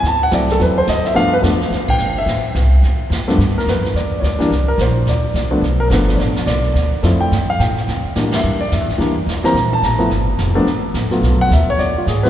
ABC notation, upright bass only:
X:1
M:4/4
L:1/8
Q:"Swing" 1/4=214
K:Gmix
V:1 name="Upright bass" clef=bass
D,,2 C,,2 E,,2 D,,2 | G,,2 F,,2 D,,2 G,,,2 | A,,,2 C,,2 D,,2 E,, z | G,,2 F,,2 E,,2 D,, z |
C,,2 _B,,,2 D,,2 C,,2 | B,,,2 G,,,2 A,,,2 B,,,2 | D,,2 F,,2 G,,2 A,,2 | C, z A,,2 G,,2 (3F,, E,, C,, |
E,,2 D,, z _B,,,2 A,,,2 | G,,,2 F,,,2 G,,,2 A,,,2 | B,,,2 D,, z E,,2 ^G,,2 |]